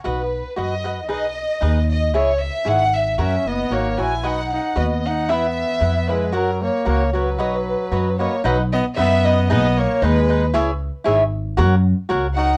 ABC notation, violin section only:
X:1
M:2/4
L:1/16
Q:1/4=115
K:B
V:1 name="Violin section"
B4 d4 | d6 d2 | c2 e2 f2 e2 | e2 d2 c2 g2 |
f2 f2 d2 f2 | e6 B2 | A2 c2 c2 B2- | B6 c2 |
B2 d2 e2 d2 | d2 c2 B3 z | z8 | z6 f2 |]